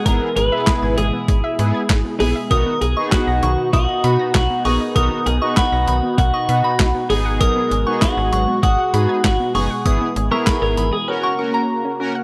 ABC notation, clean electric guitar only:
X:1
M:4/4
L:1/16
Q:1/4=98
K:B
V:1 name="Clean electric guitar"
A2 B4 G8 G2 | A2 G2 F4 F4 F2 G2 | A2 G2 F4 F6 G2 | A4 F4 F4 F2 G2- |
G3 A2 A2 G A6 z2 |]